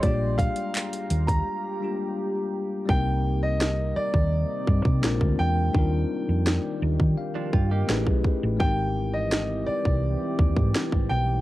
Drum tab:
HH |x-xxxxxx--------|----------------|----------------|----------------|
CP |----x-----------|----------------|----------------|----------------|
SD |----------------|----o-------o---|----o-------o---|----o-------o---|
BD |o-o----o--------|o------o--oo-o--|o------o--o--oo-|o------o--oo-o--|